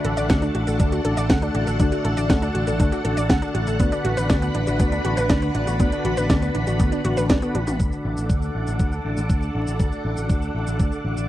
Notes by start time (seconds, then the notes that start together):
Already playing: D3 A3 D4 F#4 A4 D5 F#5 A5
0.05 A1 A4, closed hi-hat
0.17 A1 D3 A3 D4 F#4 D5, closed hi-hat, cabasa
0.30 D2 F#5, kick, snare, closed hi-hat, cabasa
0.42 D4, closed hi-hat, cabasa
0.55 A1 F#4, closed hi-hat
0.67 A1 D3 A3 D4 F#4 A4 D5, closed hi-hat, cabasa
0.80 D2 D4, kick, closed hi-hat, cabasa
0.92 F#4, closed hi-hat, cabasa
1.05 A1 D3 A3 D4 F#4 A4 D5, closed hi-hat
1.17 A1 D5, closed hi-hat, cabasa
1.30 D2 F#5, kick, snare, closed hi-hat, cabasa
1.42 D3 A3 D4 F#4 D5, closed hi-hat, cabasa
1.55 A1 F#4, closed hi-hat
1.67 A1 A4, closed hi-hat, cabasa
1.80 D2 D3 A3 D4 F#4 D5, kick, closed hi-hat, cabasa
1.92 F#4, closed hi-hat, cabasa
2.05 A1 A4, closed hi-hat
2.17 A1 D3 A3 D4 F#4 D5, closed hi-hat, cabasa
2.30 D2 F#5, kick, snare, closed hi-hat, cabasa
2.42 D4, closed hi-hat, cabasa
2.55 A1 F#4, closed hi-hat
2.67 A1 D3 A3 D4 F#4 A4 D5, closed hi-hat, cabasa
2.80 D2 D4, kick, closed hi-hat, cabasa
2.92 F#4, closed hi-hat, cabasa
3.05 A1 D3 A3 D4 F#4 A4 D5, closed hi-hat
3.17 A1 D5, closed hi-hat, cabasa
3.30 D2 F#5, kick, snare, closed hi-hat, cabasa
3.42 D3 A3 D4 F#4 D5, closed hi-hat, cabasa
3.55 A1 F#4, closed hi-hat
3.67 A1 A4, closed hi-hat, cabasa
3.79 D2 D3 B3 D4 F#4 B4 D5 B5, kick, closed hi-hat, cabasa
3.92 D4, closed hi-hat, cabasa
4.05 A1 F#4, closed hi-hat
4.17 A1 D3 B3 D4 F#4 B4 D5, closed hi-hat, cabasa
4.30 D2 D5, kick, snare, closed hi-hat, cabasa
4.42 B3, closed hi-hat, cabasa
4.55 A1 D4, closed hi-hat
4.67 A1 D3 B3 D4 F#4 D5, closed hi-hat, cabasa
4.80 D2 B3, kick, closed hi-hat, cabasa
4.92 D4, closed hi-hat, cabasa
5.05 A1 D3 B3 D4 F#4 D5, closed hi-hat
5.17 A1 B4, closed hi-hat, cabasa
5.30 D2 D5, kick, snare, closed hi-hat, cabasa
5.42 D3 B3 D4 F#4 D5, closed hi-hat, cabasa
5.55 A1 D4, closed hi-hat
5.67 A1 F#4, closed hi-hat, cabasa
5.80 D2 D3 B3 D4 F#4 D5, kick, closed hi-hat, cabasa
5.92 D4, closed hi-hat, cabasa
6.05 A1 F#4, closed hi-hat
6.17 A1 D3 B3 D4 F#4 B4 D5, closed hi-hat, cabasa
6.30 D2 D5, kick, snare, closed hi-hat, cabasa
6.42 B3, closed hi-hat, cabasa
6.55 A1 D4, closed hi-hat
6.67 A1 D3 B3 D4 F#4 D5, closed hi-hat, cabasa
6.80 D2 B3, kick, closed hi-hat, cabasa
6.92 D4, closed hi-hat, cabasa
7.05 A1 D3 B3 D4 F#4 D5, closed hi-hat
7.17 A1 B4, closed hi-hat, cabasa
7.30 D2 D5, kick, snare, closed hi-hat, cabasa
7.42 D3 B3 D4 F#4 D5, closed hi-hat, cabasa
7.55 A1 D4, closed hi-hat, high tom
7.67 A1 F#4, closed hi-hat, mid tom, cabasa
7.80 D2 D3 A3 D4 F#4 A4 D5 F#5 D6, kick, cabasa
7.92 cabasa
8.05 A1
8.17 A1 D3 A3 D4 F#4 D5, cabasa
8.30 D2, kick, cabasa
8.42 cabasa
8.55 A1
8.67 A1 D3 A3 D4 F#4 D5, cabasa
8.80 D2, kick, cabasa
8.92 cabasa
9.04 A1 D3 A3 D4 F#4 D5
9.17 A1, cabasa
9.30 D2, kick, cabasa
9.42 D3 A3 D4 F#4 D5, cabasa
9.55 A1
9.67 A1, cabasa
9.79 D2 D3 A3 D4 F#4 D5, kick, cabasa
9.92 cabasa
10.05 A1
10.17 A1 D3 A3 D4 F#4 D5, cabasa
10.30 D2, kick, cabasa
10.42 cabasa
10.55 A1
10.67 A1 D3 A3 D4 F#4 D5, cabasa
10.80 D2, kick, cabasa
10.92 cabasa
11.05 A1 D3 A3 D4 F#4 D5
11.17 A1, cabasa